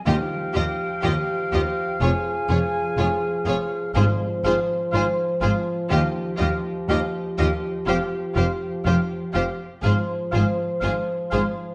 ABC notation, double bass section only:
X:1
M:4/4
L:1/8
Q:1/4=61
K:Ab
V:1 name="Double bass section" clef=bass
E,, E,, E,, E,, F,,, F,,, F,,, F,,, | A,,, A,,, A,,, A,,, E,, E,, E,, E,, | F,,, F,,, F,,, F,,, A,,, A,,, A,,, A,,, |]